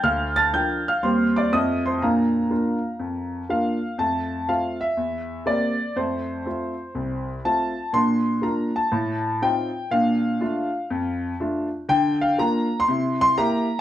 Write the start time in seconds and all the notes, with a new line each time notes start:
0.03 D2 F5 F6
0.36 A5 A6
0.53 F3 D4 A#4 G5 G6
0.88 F5 F6
1.03 D#2 G3 C4 G4 C5 C6
1.36 D5 D6
1.52 F2 A3 C4 F4 D#5 D#6
1.86 C5 C6
2.02 A#2 D4 A#4 F5 A#5
2.51 A#3 D4 F4
2.99 F2
3.49 A#3 D4 F4 F5
3.98 F2 A3 A5
4.48 A3 C4 F4 F5
4.81 E5
4.97 E2
5.46 A#3 C4 G4 D5
5.96 F2 A3 C5
6.46 A3 C4 F4
6.95 C2
7.44 A3 C4 F4 A5
7.93 A#2 D4 C6
8.42 A#3 D4 F4 A#5
8.76 A5
8.92 A2
9.42 C4 D#4 F4 G5
9.91 A#2 D4 F5
10.40 A3 D4 F4
10.90 F2
11.40 A3 D4 F4
11.89 D3 G5
12.21 F5
12.38 A#3 D4 F4 A#5
12.80 C6
12.88 C3 E4
13.21 C6
13.38 A#3 E4 G4 A#5